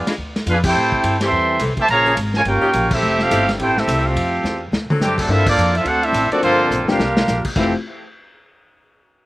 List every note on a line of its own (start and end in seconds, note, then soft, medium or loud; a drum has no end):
0.07 0.15 E3 loud
0.07 0.14 G#3 medium
0.07 0.14 D4 medium
0.07 0.15 F4 loud
0.07 muted upright bass stroke soft
0.07 snare medium
0.07 ride medium
0.18 0.45 D2 medium
0.36 snare medium
0.36 ride medium
0.46 0.74 F2 loud
0.46 0.55 B3 medium
0.46 0.55 D4 medium
0.46 0.57 D4 medium
0.46 0.55 F4 medium
0.46 0.57 G#4 medium
0.46 0.57 F5 loud
0.46 hi-hat pedal medium
0.46 ride medium
0.50 0.57 B4 medium
0.64 1.17 C4 medium
0.64 1.17 E4 medium
0.64 1.18 E4 medium
0.64 1.17 G4 loud
0.64 1.18 A4 medium
0.64 1.18 C5 medium
0.64 1.18 G5 loud
0.64 kick loud
0.64 crash loud
0.75 1.03 A2 medium
0.92 kick medium
1.04 1.31 G2 medium
1.04 hi-hat pedal medium
1.04 ride medium
1.21 1.60 E3 loud
1.21 1.29 E3 loud
1.21 1.60 G3 loud
1.21 1.29 A3 medium
1.21 1.29 C4 medium
1.21 1.61 C4 loud
1.21 1.29 G4 loud
1.21 1.62 A4 medium
1.21 1.62 E5 medium
1.21 1.62 G5 medium
1.21 1.62 C6 loud
1.21 snare medium
1.21 ride medium
1.31 1.59 E2 medium
1.59 1.76 C2 loud
1.59 1.72 E3 medium
1.59 1.72 A3 medium
1.59 1.72 C4 medium
1.59 1.72 A4 loud
1.59 hi-hat pedal medium
1.59 ride medium
1.77 1.83 C3 medium
1.77 1.83 E3 medium
1.77 1.84 A3 medium
1.77 1.84 G4 loud
1.77 1.84 C5 medium
1.77 1.84 E5 medium
1.77 1.84 A5 loud
1.77 muted upright bass stroke soft
1.77 kick medium
1.77 ride medium
1.88 2.16 A#1 medium
1.88 2.16 C#3 medium
1.88 2.16 F3 loud
1.88 2.16 A#3 medium
1.88 2.16 G#4 loud
1.88 2.16 C#5 loud
1.88 2.16 F5 loud
1.88 2.16 A#5 loud
1.88 ride medium
2.05 2.13 F3 loud
2.05 2.13 A#3 medium
2.05 2.13 C#4 loud
2.05 2.13 G#4 loud
2.16 2.44 G#1 loud
2.16 hi-hat pedal medium
2.16 ride medium
2.34 2.40 C#3 medium
2.34 2.40 F3 medium
2.34 2.40 G#3 medium
2.34 2.41 F4 medium
2.34 2.41 A#4 medium
2.34 2.41 C#5 medium
2.34 2.41 G#5 medium
2.34 snare soft
2.45 2.61 G1 medium
2.45 2.88 A#3 loud
2.45 2.88 C#4 medium
2.45 2.89 F4 medium
2.45 2.88 G4 loud
2.45 2.89 A#4 medium
2.45 2.89 C#5 medium
2.45 2.89 G5 loud
2.45 ride medium
2.61 2.69 F3 loud
2.61 2.69 C#4 loud
2.61 2.69 D#4 loud
2.61 2.69 G4 loud
2.61 muted upright bass stroke soft
2.73 3.01 A#1 loud
2.73 hi-hat pedal medium
2.73 ride medium
2.91 3.19 A3 medium
2.91 3.19 C4 medium
2.91 3.20 C4 medium
2.91 3.20 E4 medium
2.91 3.20 G4 medium
2.91 3.20 A4 medium
2.91 3.21 E5 loud
2.91 kick loud
2.91 crash medium
3.02 3.30 F1 loud
3.19 3.48 A3 medium
3.19 3.48 C4 medium
3.19 3.49 C4 medium
3.19 3.48 F4 medium
3.19 3.49 G4 loud
3.19 3.49 A4 loud
3.19 3.49 F5 loud
3.19 snare soft
3.30 3.58 G1 loud
3.30 3.72 F3 loud
3.30 3.72 A3 loud
3.30 3.72 E4 loud
3.30 3.72 G4 loud
3.30 hi-hat pedal medium
3.30 ride medium
3.49 snare medium
3.49 ride medium
3.59 3.87 A1 loud
3.59 3.75 C4 loud
3.59 3.75 E4 medium
3.59 3.76 E4 medium
3.59 3.75 G4 medium
3.59 3.76 A4 medium
3.59 3.76 C5 medium
3.59 3.76 G5 loud
3.59 ride medium
3.77 4.05 A3 medium
3.77 4.05 C4 medium
3.77 4.05 E4 medium
3.77 4.05 G4 medium
3.77 4.05 A4 medium
3.77 4.05 E5 medium
3.77 snare medium
3.88 4.14 C2 loud
3.88 hi-hat pedal medium
3.88 ride loud
4.06 4.62 A3 medium
4.06 4.62 C4 medium
4.06 4.62 F4 medium
4.06 4.62 G4 medium
4.06 4.62 A4 medium
4.06 4.62 F5 medium
4.15 4.43 F2 medium
4.15 ride medium
4.44 4.71 E2 loud
4.44 snare medium
4.44 hi-hat pedal medium
4.72 4.88 D2 medium
4.72 snare medium
4.89 5.27 F#3 loud
4.89 5.27 C4 medium
4.89 5.27 D4 medium
4.89 5.27 A4 loud
4.89 muted upright bass stroke soft
4.89 mid tom loud
5.00 5.27 F#2 medium
5.00 5.17 G3 medium
5.00 5.17 A3 medium
5.00 5.18 C4 medium
5.00 5.17 G4 loud
5.00 snare medium
5.00 hi-hat pedal medium
5.18 5.29 C3 medium
5.18 5.29 F#3 medium
5.18 5.30 F#3 medium
5.18 5.29 A3 medium
5.18 5.30 C4 medium
5.18 5.30 D4 medium
5.18 5.30 A4 medium
5.18 kick medium
5.18 crash medium
5.28 5.56 G2 medium
5.28 5.44 A#3 medium
5.28 5.44 C4 medium
5.28 5.47 C4 medium
5.28 5.44 D4 medium
5.28 5.46 E4 medium
5.28 5.44 F4 medium
5.28 5.47 F4 loud
5.28 5.45 A4 medium
5.28 5.47 A4 medium
5.28 5.47 E5 loud
5.46 5.73 F3 medium
5.46 5.73 A#3 medium
5.46 5.74 A#3 loud
5.46 5.73 D4 loud
5.46 5.73 F4 loud
5.46 5.74 A4 medium
5.46 5.74 D5 loud
5.46 kick loud
5.46 crash loud
5.57 5.84 F2 medium
5.57 hi-hat pedal medium
5.75 5.87 C4 medium
5.75 5.86 E4 medium
5.75 5.87 F4 medium
5.75 5.86 A4 medium
5.75 5.87 E5 loud
5.75 ride medium
5.85 6.12 D2 medium
5.85 6.03 A3 loud
5.85 6.03 C4 loud
5.85 6.03 D4 medium
5.85 6.03 F#4 medium
5.85 6.03 A4 loud
5.85 6.03 C5 medium
5.85 6.04 F#5 loud
5.85 ride medium
6.03 6.31 A3 loud
6.03 6.32 C4 loud
6.03 6.32 D4 loud
6.03 6.32 E4 loud
6.03 6.30 A4 medium
6.03 6.32 C5 medium
6.03 6.32 E5 loud
6.03 ride medium
6.13 6.29 A1 loud
6.13 hi-hat pedal medium
6.13 ride medium
6.31 6.42 F#3 medium
6.31 6.42 A3 medium
6.31 6.69 A#3 medium
6.31 6.41 C4 medium
6.31 6.69 C4 medium
6.31 6.42 D4 medium
6.31 6.69 D4 medium
6.31 6.69 F4 medium
6.31 6.41 F#4 medium
6.31 6.41 A4 medium
6.31 6.69 C5 medium
6.31 6.41 D5 loud
6.31 muted upright bass stroke soft
6.31 ride medium
6.42 6.70 G1 medium
6.42 6.85 D3 medium
6.42 6.85 F3 medium
6.42 6.85 A#3 loud
6.42 6.85 C4 loud
6.42 6.85 F4 medium
6.42 6.85 A4 loud
6.42 6.85 C5 loud
6.42 ride medium
6.70 6.80 A#1 loud
6.70 hi-hat pedal medium
6.80 6.89 G1 medium
6.88 6.98 F1 medium
6.88 7.45 G3 medium
6.88 6.98 A#3 medium
6.88 7.45 A#3 medium
6.88 6.98 C4 medium
6.88 6.98 D4 medium
6.88 7.45 D4 medium
6.88 6.98 F4 medium
6.88 7.45 F4 medium
6.88 6.98 G4 medium
6.88 7.45 G4 medium
6.88 7.45 A#4 medium
6.88 7.45 F5 medium
6.88 snare medium
6.99 7.26 C2 medium
6.99 snare medium
7.17 snare loud
7.28 7.44 A#1 loud
7.28 snare medium
7.28 hi-hat pedal medium
7.45 muted upright bass stroke soft
7.45 kick medium
7.45 crash medium
7.55 7.72 F1 medium
7.55 7.72 F2 medium
7.55 7.72 C3 medium
7.55 7.72 E3 medium
7.55 7.72 A3 medium
7.55 7.72 C4 medium
7.55 7.72 E4 medium
7.55 7.72 F4 medium
7.55 7.72 G4 medium
7.55 7.72 A4 medium
7.55 7.72 F5 medium
7.55 kick loud
7.55 china medium